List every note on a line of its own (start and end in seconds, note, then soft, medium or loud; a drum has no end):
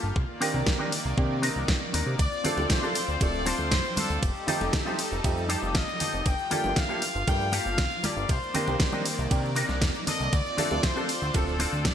0.00 0.12 G1 medium
0.00 0.16 A#3 medium
0.00 0.14 F4 medium
0.00 0.16 F4 medium
0.00 0.16 G4 medium
0.00 0.17 A4 loud
0.16 0.25 C2 loud
0.16 2.17 D#3 medium
0.16 2.17 A#3 medium
0.16 4.19 D5 medium
0.16 kick loud
0.40 0.52 D#3 medium
0.40 0.52 A#3 medium
0.40 0.60 C4 loud
0.40 0.52 C4 medium
0.40 0.60 D4 loud
0.40 0.52 D4 medium
0.40 0.61 D#4 loud
0.40 0.52 G4 medium
0.40 0.61 A#4 loud
0.40 open hi-hat loud
0.54 0.63 C2 medium
0.54 0.76 D#3 medium
0.54 0.76 A#3 medium
0.54 0.77 C4 medium
0.54 0.77 D4 medium
0.54 0.77 G4 medium
0.66 kick loud
0.66 snare loud
0.79 0.90 D#3 medium
0.79 0.90 A#3 medium
0.79 0.92 C4 loud
0.79 0.90 C4 medium
0.79 0.92 D4 medium
0.79 0.90 D4 medium
0.79 0.92 D#4 medium
0.79 0.91 G4 medium
0.79 0.93 A#4 loud
0.92 open hi-hat loud
1.04 1.14 C2 medium
1.04 muted clean electric guitar stroke soft
1.17 1.50 C3 medium
1.17 1.35 D#3 medium
1.17 1.35 A#3 medium
1.17 1.35 C4 medium
1.17 1.35 D4 medium
1.17 1.35 G4 loud
1.17 kick loud
1.42 1.68 C4 loud
1.42 1.68 D4 loud
1.42 1.69 D#4 loud
1.42 1.69 A#4 loud
1.42 open hi-hat loud
1.56 1.65 C2 medium
1.68 kick loud
1.68 snare loud
1.93 2.03 D#2 loud
1.93 2.19 C4 medium
1.93 2.19 D4 medium
1.93 2.20 D#4 medium
1.93 2.20 A#4 loud
1.93 open hi-hat loud
2.07 2.15 C3 loud
2.19 2.28 D2 loud
2.19 4.21 C4 medium
2.19 4.21 F4 medium
2.19 2.67 D5 loud
2.19 kick loud
2.19 ride medium
2.19 shaker medium
2.32 shaker soft
2.44 2.55 F3 medium
2.44 2.55 A3 medium
2.44 2.63 C4 loud
2.44 2.56 C4 medium
2.44 2.64 D4 loud
2.44 2.56 D4 medium
2.44 2.64 F4 loud
2.44 2.56 A4 medium
2.44 2.64 A4 loud
2.44 open hi-hat loud
2.44 low conga medium
2.44 shaker medium
2.57 2.66 D2 medium
2.57 2.80 F3 medium
2.57 2.80 A3 medium
2.57 2.80 C4 medium
2.57 2.80 D4 medium
2.57 2.80 A4 medium
2.57 muted conga medium
2.57 shaker soft
2.70 3.21 C5 loud
2.70 kick loud
2.70 snare loud
2.70 ride medium
2.70 shaker medium
2.82 2.94 F3 medium
2.82 2.94 A3 medium
2.82 2.95 C4 medium
2.82 2.94 C4 medium
2.82 2.95 D4 medium
2.82 2.94 D4 medium
2.82 2.96 F4 medium
2.82 2.96 A4 loud
2.82 2.94 A4 medium
2.82 shaker soft
2.95 open hi-hat loud
2.95 shaker loud
3.08 3.17 D2 medium
3.08 muted clean electric guitar stroke soft
3.08 shaker soft
3.20 3.53 D1 loud
3.20 3.38 F3 medium
3.20 3.38 A3 medium
3.20 3.39 C4 medium
3.20 3.39 D4 medium
3.20 3.39 A4 loud
3.20 3.47 D5 loud
3.20 kick loud
3.20 ride medium
3.20 shaker medium
3.34 shaker soft
3.46 3.71 C4 loud
3.46 3.72 D4 loud
3.46 3.72 F4 loud
3.46 3.72 A4 loud
3.46 3.97 C5 loud
3.46 open hi-hat loud
3.46 muted conga medium
3.46 shaker medium
3.58 3.73 D2 medium
3.58 muted conga soft
3.58 shaker soft
3.71 3.81 G2 medium
3.71 kick loud
3.71 snare loud
3.71 ride medium
3.71 shaker medium
3.84 shaker soft
3.96 4.22 C4 medium
3.96 4.23 D4 medium
3.96 4.23 F4 medium
3.96 4.23 A4 loud
3.96 4.23 C5 loud
3.96 open hi-hat loud
3.96 high conga medium
3.96 low conga medium
3.96 shaker loud
4.10 4.19 D2 medium
4.10 shaker soft
4.22 4.32 F1 loud
4.22 6.24 G3 medium
4.22 6.24 D#4 medium
4.22 5.20 G4 medium
4.22 6.24 A4 medium
4.22 kick loud
4.22 ride medium
4.22 shaker medium
4.35 shaker soft
4.47 4.59 F3 medium
4.47 4.59 A3 medium
4.47 4.59 C4 medium
4.47 4.67 D#4 loud
4.47 4.59 D#4 medium
4.47 4.67 F4 loud
4.47 4.67 G4 loud
4.47 4.59 G4 medium
4.47 4.68 A4 loud
4.47 open hi-hat loud
4.47 low conga medium
4.47 shaker medium
4.61 4.70 F1 medium
4.61 4.83 F3 medium
4.61 4.83 A3 medium
4.61 4.83 C4 medium
4.61 4.84 D#4 medium
4.61 4.84 G4 medium
4.61 muted conga medium
4.61 shaker soft
4.73 kick loud
4.73 snare loud
4.73 ride medium
4.73 shaker soft
4.85 4.97 F3 medium
4.85 4.97 A3 medium
4.85 4.97 C4 medium
4.85 4.98 D#4 loud
4.85 4.97 D#4 medium
4.85 4.99 F4 medium
4.85 4.99 G4 medium
4.85 4.97 G4 medium
4.85 4.99 C5 loud
4.85 high conga medium
4.85 shaker soft
4.99 open hi-hat loud
4.99 shaker medium
5.11 5.21 F1 medium
5.11 muted clean electric guitar stroke soft
5.11 shaker soft
5.24 5.56 F2 medium
5.24 5.41 F3 medium
5.24 5.42 A3 medium
5.24 5.42 C4 medium
5.24 5.42 D#4 medium
5.24 5.42 G4 loud
5.24 kick loud
5.24 ride medium
5.24 shaker soft
5.37 shaker soft
5.49 5.75 D#4 loud
5.49 5.75 F4 loud
5.49 5.75 G4 loud
5.49 5.76 A4 loud
5.49 5.73 D5 medium
5.49 open hi-hat loud
5.49 shaker medium
5.63 5.77 F1 medium
5.63 shaker soft
5.75 5.84 A1 medium
5.75 6.23 D#5 loud
5.75 5.99 F5 medium
5.75 kick loud
5.75 snare loud
5.75 ride medium
5.75 shaker medium
5.88 shaker soft
6.00 6.26 D#4 medium
6.00 6.26 F4 medium
6.00 6.26 G4 medium
6.00 6.27 A4 loud
6.00 6.24 G5 medium
6.00 open hi-hat loud
6.00 low conga medium
6.00 shaker medium
6.13 6.22 F1 medium
6.13 shaker soft
6.26 6.35 G1 loud
6.26 8.27 F4 medium
6.26 6.77 G5 loud
6.26 kick loud
6.26 ride medium
6.26 shaker medium
6.38 shaker soft
6.51 6.62 F3 medium
6.51 6.62 A3 medium
6.51 6.70 A#3 loud
6.51 6.62 A#3 medium
6.51 6.62 D4 medium
6.51 6.70 F4 loud
6.51 6.71 G4 loud
6.51 6.63 G4 medium
6.51 6.71 A4 loud
6.51 open hi-hat loud
6.51 low conga medium
6.51 shaker medium
6.64 6.73 G1 medium
6.64 6.86 F3 medium
6.64 6.87 A3 medium
6.64 6.87 A#3 medium
6.64 6.87 D4 medium
6.64 6.87 G4 medium
6.64 muted conga medium
6.64 shaker soft
6.76 7.28 F5 loud
6.76 kick loud
6.76 snare loud
6.76 ride medium
6.76 shaker medium
6.88 7.00 F3 medium
6.88 7.00 A3 medium
6.88 7.02 A#3 loud
6.88 7.00 A#3 medium
6.88 7.01 D4 medium
6.88 7.02 F4 medium
6.88 7.02 G4 medium
6.88 7.01 G4 medium
6.88 7.03 A4 loud
6.88 shaker soft
7.02 open hi-hat loud
7.02 shaker medium
7.14 7.24 G1 medium
7.14 muted clean electric guitar stroke soft
7.14 shaker soft
7.27 7.60 G2 medium
7.27 7.45 F3 medium
7.27 7.45 A3 medium
7.27 7.45 A#3 medium
7.27 7.45 D4 medium
7.27 7.45 G4 loud
7.27 7.53 G5 loud
7.27 kick loud
7.27 ride medium
7.27 shaker medium
7.40 shaker soft
7.52 7.78 A#3 loud
7.52 7.78 F4 loud
7.52 7.79 G4 loud
7.52 7.79 A4 loud
7.52 8.04 F5 loud
7.52 open hi-hat loud
7.52 muted conga medium
7.52 shaker medium
7.65 7.80 G1 medium
7.65 muted conga soft
7.65 shaker soft
7.78 7.87 C2 medium
7.78 kick loud
7.78 snare loud
7.78 ride medium
7.78 shaker medium
7.91 shaker soft
8.03 8.29 A#3 medium
8.03 8.29 F4 medium
8.03 8.30 G4 medium
8.03 8.30 A4 loud
8.03 8.30 D5 loud
8.03 open hi-hat loud
8.03 high conga loud
8.03 low conga medium
8.03 shaker medium
8.17 8.26 G1 medium
8.17 shaker soft
8.29 8.38 C2 loud
8.29 10.30 D#3 medium
8.29 10.31 A#3 medium
8.29 9.31 C5 medium
8.29 11.94 D5 loud
8.29 kick loud
8.29 ride medium
8.29 shaker soft
8.43 shaker soft
8.54 8.65 D#3 medium
8.54 8.66 A#3 medium
8.54 8.74 C4 loud
8.54 8.66 C4 medium
8.54 8.74 D4 loud
8.54 8.66 D4 medium
8.54 8.74 D#4 loud
8.54 8.66 G4 medium
8.54 8.74 A#4 loud
8.54 open hi-hat loud
8.54 low conga medium
8.54 shaker medium
8.67 8.76 C2 medium
8.67 8.90 D#3 medium
8.67 8.90 A#3 medium
8.67 8.90 C4 medium
8.67 8.90 D4 medium
8.67 8.90 G4 medium
8.67 muted conga medium
8.67 shaker soft
8.80 kick loud
8.80 snare loud
8.80 ride medium
8.80 shaker soft
8.92 9.03 D#3 medium
8.92 9.04 A#3 medium
8.92 9.05 C4 loud
8.92 9.04 C4 medium
8.92 9.06 D4 medium
8.92 9.04 D4 medium
8.92 9.06 D#4 medium
8.92 9.04 G4 medium
8.92 9.06 A#4 loud
8.92 high conga medium
8.92 shaker soft
9.06 open hi-hat loud
9.06 shaker medium
9.18 9.27 C2 medium
9.18 muted clean electric guitar stroke soft
9.18 shaker soft
9.30 9.63 C3 medium
9.30 9.48 D#3 medium
9.30 9.48 A#3 medium
9.30 9.48 C4 medium
9.30 9.48 D4 medium
9.30 9.48 G4 loud
9.30 kick loud
9.30 ride medium
9.30 shaker medium
9.45 shaker soft
9.56 9.82 C4 loud
9.56 9.82 D4 loud
9.56 9.82 D#4 loud
9.56 9.82 A#4 loud
9.56 open hi-hat loud
9.56 shaker medium
9.69 9.83 C2 medium
9.69 snare soft
9.69 shaker soft
9.82 9.91 F2 medium
9.82 kick loud
9.82 snare loud
9.82 ride medium
9.82 shaker medium
9.95 shaker soft
10.07 10.32 C4 medium
10.07 10.33 D4 medium
10.07 10.33 D#4 medium
10.07 10.33 A4 loud
10.07 10.31 D#5 loud
10.07 open hi-hat loud
10.07 low conga medium
10.07 shaker medium
10.20 10.29 C2 medium
10.20 shaker soft
10.33 10.42 D2 loud
10.33 11.94 C4 medium
10.33 11.94 F4 medium
10.33 10.84 D5 loud
10.33 kick loud
10.33 ride medium
10.33 shaker medium
10.46 shaker soft
10.57 10.69 F3 medium
10.57 10.69 A3 medium
10.57 10.77 C4 loud
10.57 10.69 C4 medium
10.57 10.77 D4 loud
10.57 10.69 D4 medium
10.57 10.77 F4 loud
10.57 10.69 A4 medium
10.57 10.78 A4 loud
10.57 open hi-hat loud
10.57 low conga medium
10.57 shaker loud
10.71 10.80 D2 medium
10.71 10.93 F3 medium
10.71 10.93 A3 medium
10.71 10.93 C4 medium
10.71 10.94 D4 medium
10.71 10.94 A4 medium
10.71 muted conga medium
10.71 shaker soft
10.83 11.34 C5 loud
10.83 kick loud
10.83 snare loud
10.83 ride medium
10.83 shaker soft
10.96 11.07 F3 medium
10.96 11.07 A3 medium
10.96 11.09 C4 medium
10.96 11.07 C4 medium
10.96 11.09 D4 medium
10.96 11.07 D4 medium
10.96 11.09 F4 medium
10.96 11.07 A4 medium
10.96 11.10 A4 loud
10.96 shaker soft
11.09 open hi-hat loud
11.09 shaker medium
11.21 11.31 D2 medium
11.21 muted clean electric guitar stroke soft
11.21 shaker soft
11.34 11.67 D1 loud
11.34 11.52 F3 medium
11.34 11.52 A3 medium
11.34 11.52 C4 medium
11.34 11.52 D4 medium
11.34 11.86 A4 loud
11.34 11.52 A4 loud
11.34 kick loud
11.34 ride medium
11.34 shaker medium
11.48 shaker soft
11.59 11.85 C4 loud
11.59 11.85 D4 loud
11.59 11.86 F4 loud
11.59 11.86 A4 loud
11.59 open hi-hat loud
11.59 muted conga soft
11.59 shaker medium
11.73 11.87 D2 medium
11.73 muted conga soft
11.73 shaker soft
11.85 11.94 G2 medium
11.85 11.94 D5 loud
11.85 kick loud
11.85 snare loud
11.85 ride medium
11.85 shaker medium